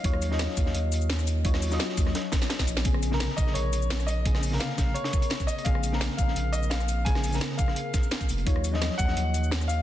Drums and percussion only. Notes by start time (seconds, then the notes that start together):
0.04 kick, closed hi-hat
0.13 cross-stick
0.22 closed hi-hat, shaker
0.32 snare
0.39 snare, closed hi-hat
0.49 snare
0.57 kick, closed hi-hat, shaker
0.66 snare
0.74 closed hi-hat
0.92 closed hi-hat, shaker
0.94 closed hi-hat
1.01 shaker
1.10 snare, closed hi-hat
1.19 cross-stick, shaker
1.27 closed hi-hat, shaker
1.45 kick, closed hi-hat
1.54 cross-stick, snare
1.62 closed hi-hat, open hi-hat, shaker
1.71 snare, shaker
1.79 snare, closed hi-hat
1.89 snare
1.97 kick, closed hi-hat, shaker
2.06 cross-stick, snare
2.15 snare, closed hi-hat
2.32 kick, snare, closed hi-hat, shaker
2.42 snare, shaker
2.50 snare, closed hi-hat
2.59 kick, snare, shaker
2.67 closed hi-hat, shaker
2.77 snare, closed hi-hat
2.85 kick, closed hi-hat
2.94 cross-stick
3.03 closed hi-hat, shaker
3.12 snare
3.20 snare, closed hi-hat
3.29 snare
3.38 kick, closed hi-hat, shaker
3.47 snare
3.55 closed hi-hat
3.73 closed hi-hat, shaker
3.82 shaker
3.90 snare, closed hi-hat
4.00 cross-stick, shaker
4.08 closed hi-hat, shaker
4.26 kick, closed hi-hat
4.35 cross-stick, snare
4.43 closed hi-hat, open hi-hat, shaker
4.52 snare
4.60 snare, closed hi-hat
4.70 snare
4.78 kick, snare, closed hi-hat, shaker
4.95 closed hi-hat
5.04 snare, closed hi-hat
5.13 kick, closed hi-hat, shaker
5.22 closed hi-hat, shaker
5.30 snare, closed hi-hat
5.40 kick, shaker
5.48 closed hi-hat, shaker
5.58 closed hi-hat
5.65 kick, closed hi-hat
5.75 cross-stick
5.83 closed hi-hat, shaker
5.93 snare
6.01 snare, closed hi-hat
6.10 snare
6.18 kick, closed hi-hat, shaker
6.28 snare
6.36 closed hi-hat
6.53 closed hi-hat, shaker
6.63 shaker
6.71 snare, closed hi-hat
6.80 cross-stick, shaker
6.89 closed hi-hat, shaker
7.06 kick, closed hi-hat
7.15 cross-stick, snare
7.24 closed hi-hat, open hi-hat, shaker
7.33 snare, shaker
7.41 snare, closed hi-hat
7.50 snare
7.58 kick, closed hi-hat, shaker
7.68 cross-stick, snare
7.76 closed hi-hat
7.94 kick, snare, closed hi-hat, shaker
8.03 shaker
8.11 snare, closed hi-hat
8.21 kick, shaker
8.29 closed hi-hat, shaker
8.38 closed hi-hat
8.47 kick, closed hi-hat
8.56 cross-stick
8.64 closed hi-hat, shaker
8.74 snare
8.82 snare, closed hi-hat
8.91 snare
8.98 kick, closed hi-hat, shaker
9.08 snare
9.17 closed hi-hat
9.34 closed hi-hat, shaker
9.44 shaker
9.51 snare, closed hi-hat
9.61 cross-stick, shaker
9.69 closed hi-hat, shaker